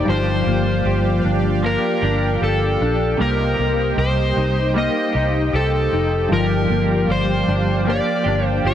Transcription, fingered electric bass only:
0.08 0.42 G1 loud
0.47 0.81 G1 loud
0.85 1.20 G1 loud
1.25 1.76 G1 loud
2.02 2.37 G1 loud
2.42 2.76 G1 loud
2.81 3.15 A#1 medium
3.20 3.54 C2 loud
3.59 3.93 C2 loud
3.98 4.32 C2 loud
4.37 4.88 C2 loud
5.15 5.49 C2 medium
5.53 5.87 C2 loud
5.93 6.27 F1 medium
6.32 6.65 G1 loud
6.70 7.04 G1 medium
7.09 7.43 G1 loud
7.48 7.99 G1 medium
8.26 8.60 G1 loud
8.65 8.74 G1 loud

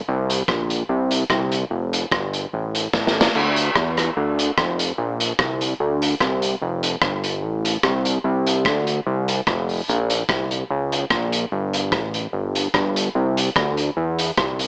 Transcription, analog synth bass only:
0.08 0.43 C2 loud
0.48 0.83 A#1 medium
0.89 1.24 C2 loud
1.30 1.65 C2 loud
1.70 2.05 F1 medium
2.12 2.47 G1 medium
2.54 2.88 A1 loud
2.94 3.29 A1 loud
3.36 3.70 D2 loud
3.76 4.10 E2 medium
4.17 4.51 D2 loud
4.58 4.92 F1 loud
4.98 5.33 A#1 loud
5.39 5.74 C2 medium
5.80 6.15 D2 medium
6.21 6.55 C2 medium
6.62 6.96 F1 loud
7.02 7.44 G1 medium
7.42 7.77 A1 medium
7.83 8.18 C2 loud
8.24 8.67 C2 loud
8.66 9.00 D2 medium
9.07 9.41 C2 loud
9.47 9.82 F1 loud
9.89 10.24 A#1 loud
10.29 10.64 C2 medium
10.70 11.05 C#2 loud
11.11 11.45 A#1 loud
11.52 11.94 G1 loud
11.92 12.27 A1 medium
12.33 12.68 G1 medium
12.75 13.09 G1 loud
13.15 13.50 C2 medium
13.56 13.91 D2 medium
13.97 14.31 E2 loud
14.38 14.67 C2 medium

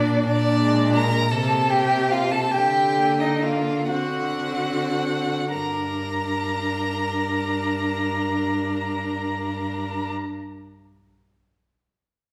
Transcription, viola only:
0.00 0.25 A#3 soft
0.61 1.30 G#3 medium
1.31 1.69 A#3 soft
1.70 2.52 A#3 soft
2.98 3.88 A#3 soft
3.90 4.39 C4 soft
4.40 5.51 C4 soft
5.53 10.11 D4 soft

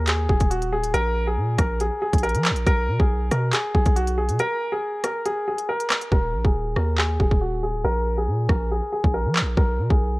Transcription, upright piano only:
0.08 0.28 G#4 medium
0.29 0.50 G#4 medium
0.50 0.71 F#4 medium
0.72 0.93 G#4 medium
0.94 1.25 A#4 loud
1.27 1.57 G#4 medium
1.58 1.79 A#4 medium
1.81 2.00 G#4 medium
2.02 2.22 G#4 medium
2.23 2.64 A#4 medium
2.67 2.98 A#4 loud
3.00 3.29 G#4 medium
3.31 3.52 A#4 medium
3.53 3.73 G#4 medium
3.74 3.95 G#4 medium
3.96 4.16 F#4 medium
4.18 4.38 G#4 medium
4.40 4.71 A#4 loud
4.72 5.02 G#4 medium
5.04 5.25 A#4 medium
5.26 5.46 G#4 medium
5.48 5.68 G#4 medium
5.69 6.09 A#4 medium
6.12 6.43 A#4 loud
6.45 6.75 G#4 medium
6.77 6.97 A#4 medium
6.98 7.19 G#4 medium
7.20 7.40 G#4 medium
7.41 7.62 F#4 medium
7.63 7.83 G#4 medium
7.85 8.16 A#4 loud
8.18 8.48 G#4 medium
8.49 8.70 A#4 medium
8.71 8.91 G#4 medium
8.92 9.13 G#4 medium
9.14 9.55 A#4 medium
9.57 9.88 A#4 loud
9.90 10.20 G#4 medium

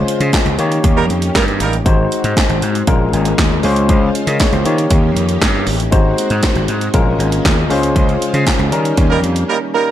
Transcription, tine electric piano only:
0.00 0.56 G#3 medium
0.00 0.56 C#4 medium
0.00 0.57 F4 medium
0.00 0.57 C5 medium
0.58 1.83 A#3 medium
0.58 1.83 D#4 medium
0.58 1.84 G4 medium
0.58 1.84 C#5 medium
1.85 2.85 G#3 medium
1.85 2.85 D#4 medium
1.85 2.86 F#4 medium
1.85 2.86 C5 medium
2.87 3.62 G#3 medium
2.87 3.62 C#4 medium
2.87 3.63 F4 medium
2.87 3.64 A#4 medium
3.63 4.63 G#3 medium
3.63 4.63 C#4 medium
3.63 4.14 F4 medium
3.63 4.14 C5 medium
4.27 4.40 A#4 medium
4.27 4.39 D#5 medium
4.40 4.52 G#4 medium
4.40 4.52 C#5 medium
4.53 4.77 F4 medium
4.53 4.77 C5 medium
4.65 5.90 A#3 medium
4.65 5.90 D#4 medium
4.65 5.90 G4 medium
4.65 5.90 C#5 medium
5.91 6.91 G#3 medium
5.91 6.92 D#4 medium
5.91 6.92 F#4 medium
5.91 6.92 C5 medium
6.94 7.68 G#3 medium
6.94 7.69 C#4 medium
6.94 7.70 F4 medium
6.94 7.71 A#4 medium
7.70 8.70 G#3 medium
7.70 8.70 C#4 medium
7.70 8.70 F4 medium
7.70 8.71 C5 medium
8.71 9.91 G3 medium
8.71 9.91 C#4 medium
8.71 9.91 D#4 medium
8.71 9.91 A#4 medium

